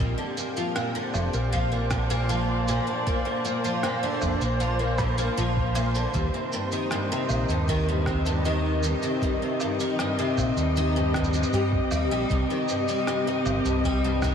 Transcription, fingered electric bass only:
0.00 A#1
1.14 F1
1.34 A#1
4.22 F1
4.41 A#1
5.38 A#1
6.14 D#2
7.30 A#1
7.49 D#2
10.38 A#1
10.57 D#2
11.53 G2
11.92 D#2
12.11 A#1
12.30 C2
13.45 G1
13.65 C2

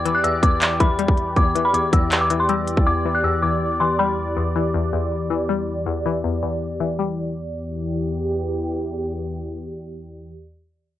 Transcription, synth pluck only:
Already playing: E2 G3
0.06 E3
0.24 E2
0.43 E2
0.80 E3
0.99 G3
1.37 E2
1.55 E3
1.74 E2
1.93 E2
2.30 E3
2.49 G3
2.87 E2
3.06 E3
3.24 E2
3.43 E2
3.80 E3
3.99 G3
4.37 E2
4.56 E3
4.74 E2
4.93 E2
5.30 E3
5.49 G3
5.86 E2
6.06 E3
6.24 E2
6.43 E2
6.81 E3
6.99 G3

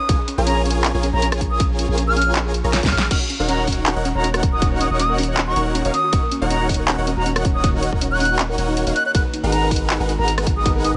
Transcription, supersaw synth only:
0.09 F4 G#4 A#4 C#5 G#5
0.38 F4 G#4 A#4 C#5 G#5
0.94 F4 G#4 A#4 C#5 G#5
1.13 F4 G#4 A#4 C#5 G#5
1.89 F4 G#4 A#4 C#5 G#5
2.64 F4 G#4 A#4 C#5 A#5
2.83 F4 G#4 A#4 C#5 G#5
2.92 F4 G#4 A#4 C#5 G#5
3.11 D#4 F#4 A#4 C#5 F#5
3.40 D#4 F#4 A#4 C#5 F#5
3.96 D#4 F#4 A#4 C#5 F#5
4.15 D#4 F#4 A#4 C#5 F#5
4.91 D#4 F#4 A#4 C#5 F#5
5.56 D#4 F#4 A#4 C#5 F#5
5.85 D#4 F#4 A#4 C#5 F5
6.13 D#4 F#4 A#4 C#5 F#5
6.42 D#4 F#4 A#4 C#5 F#5
6.98 D#4 F#4 A#4 C#5 F#5
7.17 D#4 F#4 A#4 C#5 F#5
7.92 D#4 F#4 A#4 C#5 F#5
8.58 D#4 F#4 A#4 C#5 F#5
8.87 D#4 F#4 A#4 C#5 F5
9.15 D#4 G#4 A#4 B4 F#5
9.43 D#4 G#4 A#4 B4 F#5
10.00 D#4 G#4 A#4 B4 F#5
10.19 D#4 G#4 A#4 B4 F#5

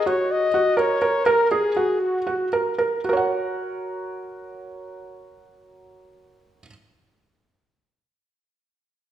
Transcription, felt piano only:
0.06 F#4
0.54 F#4
0.77 A#4
1.02 A#4
1.26 A#4
1.51 G#4
1.76 F#4
2.27 F#4
2.53 A#4
2.78 A#4
3.04 F#4
3.09 A#4
3.13 C#5 F#5

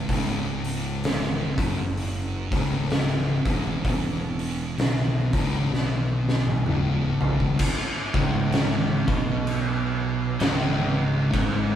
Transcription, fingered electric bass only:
0.09 C#1
1.57 F#1
2.52 C#1
3.46 E1
3.84 E1
4.78 B1
5.33 C#1
5.73 B1
6.66 C#1
8.14 C#1
9.08 B1
10.41 C#1
11.34 G#1

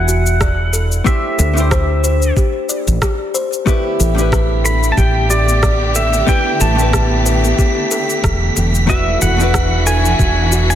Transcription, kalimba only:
0.08 F#4
0.41 D5
0.73 A4
1.06 G4
1.39 A4
1.71 C5
2.04 C5
2.37 G4
2.69 D5
3.02 G4
3.34 C5
3.67 G4
4.00 A4
4.32 B4
4.65 A4
4.98 G4
5.30 G4
5.63 D5
5.95 A4
6.28 G4
6.60 A4
6.93 G4
7.26 B4
7.58 G4
7.91 A4
8.24 A4
8.56 A4
8.89 F#4
9.22 A4
9.54 B4
9.87 A4
10.19 F#4
10.52 F#4

